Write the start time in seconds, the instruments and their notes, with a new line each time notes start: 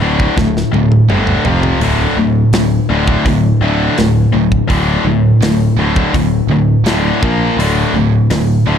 0.00 picked electric bass D1, distorted electric guitar D2 A2 D3
0.20 kick
0.36 picked electric bass D1, distorted electric guitar D2 A2, kick, snare
0.57 snare
0.71 picked electric bass D1, distorted electric guitar D2 A2, high tom
0.92 high tom
1.09 picked electric bass G1, distorted electric guitar D2 A2 D3, mid tom
1.27 mid tom
1.45 picked electric bass F1, distorted electric guitar F2 C3 F3, floor tom
1.63 floor tom
1.80 picked electric bass D1, distorted electric guitar D2 A2 D3, open hi-hat
2.17 picked electric bass D1, distorted electric guitar D2 A2
2.53 picked electric bass D1, distorted electric guitar D2 A2, snare, open hi-hat
2.89 picked electric bass D1, distorted electric guitar D2 A2 D3
3.07 kick
3.25 picked electric bass D1, distorted electric guitar D2 A2, kick, open hi-hat
3.61 picked electric bass D1, distorted electric guitar D2 A2 D3
3.97 picked electric bass D1, distorted electric guitar D2 A2, snare, open hi-hat
4.32 picked electric bass D1, distorted electric guitar D2 A2
4.52 kick
4.68 picked electric bass D1, distorted electric guitar D2 A2 D3, kick, open hi-hat
5.05 picked electric bass D1, distorted electric guitar D2 A2
5.41 picked electric bass D1, distorted electric guitar D2 A2, snare, open hi-hat
5.77 picked electric bass D1, distorted electric guitar D2 A2 D3
5.96 kick
6.14 picked electric bass D1, distorted electric guitar D2 A2, kick, open hi-hat
6.47 picked electric bass D1, distorted electric guitar D2 A2
6.84 picked electric bass D1, distorted electric guitar D2 A2, snare, open hi-hat
6.88 distorted electric guitar D3
7.23 picked electric bass A#1, distorted electric guitar A#2 F3 A#3, kick
7.57 picked electric bass D1, distorted electric guitar D2 A2 D3, open hi-hat
7.94 picked electric bass D1, distorted electric guitar D2 A2
8.30 picked electric bass D1, distorted electric guitar D2 A2, snare, open hi-hat
8.67 picked electric bass D1, distorted electric guitar D2 A2 D3